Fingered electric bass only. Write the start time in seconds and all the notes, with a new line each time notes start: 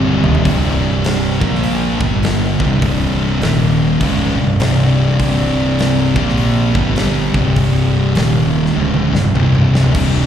Already playing: C1
0.23 D#1
0.45 C1
1.42 A#1
2.01 G1
2.60 C1
3.41 D#1
4.01 C#1
4.37 C1
4.59 C1
5.19 C1
6.16 A#1
6.75 G1
7.34 C1
8.16 D#1
8.74 C#1
9.12 C1
9.34 C1
9.95 C1